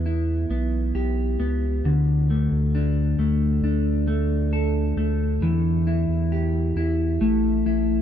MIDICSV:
0, 0, Header, 1, 3, 480
1, 0, Start_track
1, 0, Tempo, 895522
1, 988, Time_signature, 4, 2, 24, 8
1, 4298, End_track
2, 0, Start_track
2, 0, Title_t, "Clean electric guitar"
2, 0, Program_c, 0, 27
2, 0, Note_on_c, 0, 52, 87
2, 0, Note_on_c, 0, 59, 67
2, 31, Note_on_c, 0, 64, 58
2, 265, Note_off_c, 0, 59, 0
2, 271, Note_on_c, 0, 59, 66
2, 509, Note_on_c, 0, 67, 72
2, 742, Note_off_c, 0, 59, 0
2, 748, Note_on_c, 0, 59, 66
2, 990, Note_off_c, 0, 52, 0
2, 993, Note_on_c, 0, 50, 93
2, 1036, Note_off_c, 0, 59, 0
2, 1037, Note_off_c, 0, 67, 0
2, 1234, Note_on_c, 0, 57, 60
2, 1471, Note_off_c, 0, 64, 0
2, 1473, Note_on_c, 0, 62, 66
2, 1703, Note_off_c, 0, 57, 0
2, 1710, Note_on_c, 0, 57, 65
2, 1943, Note_off_c, 0, 62, 0
2, 1949, Note_on_c, 0, 62, 63
2, 2178, Note_off_c, 0, 57, 0
2, 2185, Note_on_c, 0, 57, 60
2, 2427, Note_on_c, 0, 69, 66
2, 2660, Note_off_c, 0, 57, 0
2, 2666, Note_on_c, 0, 57, 65
2, 2907, Note_on_c, 0, 52, 90
2, 2910, Note_off_c, 0, 50, 0
2, 2955, Note_off_c, 0, 57, 0
2, 2955, Note_off_c, 0, 69, 0
2, 2957, Note_off_c, 0, 62, 0
2, 3146, Note_on_c, 0, 64, 62
2, 3388, Note_on_c, 0, 67, 60
2, 3625, Note_off_c, 0, 64, 0
2, 3627, Note_on_c, 0, 64, 66
2, 3862, Note_off_c, 0, 52, 0
2, 3864, Note_on_c, 0, 57, 79
2, 3916, Note_off_c, 0, 67, 0
2, 4105, Note_off_c, 0, 64, 0
2, 4107, Note_on_c, 0, 64, 59
2, 4298, Note_off_c, 0, 57, 0
2, 4298, Note_off_c, 0, 64, 0
2, 4298, End_track
3, 0, Start_track
3, 0, Title_t, "Sub bass"
3, 0, Program_c, 1, 38
3, 0, Note_on_c, 1, 40, 113
3, 246, Note_off_c, 1, 40, 0
3, 266, Note_on_c, 1, 35, 102
3, 495, Note_off_c, 1, 35, 0
3, 506, Note_on_c, 1, 35, 96
3, 735, Note_off_c, 1, 35, 0
3, 748, Note_on_c, 1, 37, 94
3, 976, Note_off_c, 1, 37, 0
3, 987, Note_on_c, 1, 38, 103
3, 1329, Note_off_c, 1, 38, 0
3, 1348, Note_on_c, 1, 38, 116
3, 1690, Note_off_c, 1, 38, 0
3, 1705, Note_on_c, 1, 38, 107
3, 1935, Note_off_c, 1, 38, 0
3, 1942, Note_on_c, 1, 38, 108
3, 2644, Note_off_c, 1, 38, 0
3, 2661, Note_on_c, 1, 38, 99
3, 2892, Note_off_c, 1, 38, 0
3, 2900, Note_on_c, 1, 40, 102
3, 3246, Note_off_c, 1, 40, 0
3, 3261, Note_on_c, 1, 40, 103
3, 3606, Note_off_c, 1, 40, 0
3, 3621, Note_on_c, 1, 40, 103
3, 3852, Note_off_c, 1, 40, 0
3, 3862, Note_on_c, 1, 33, 103
3, 4093, Note_off_c, 1, 33, 0
3, 4104, Note_on_c, 1, 33, 96
3, 4298, Note_off_c, 1, 33, 0
3, 4298, End_track
0, 0, End_of_file